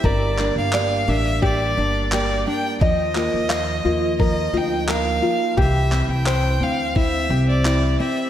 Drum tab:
CP |-xx---x-|-xx---x-|-xx---x-|
BD |o---o---|o---o---|o---o---|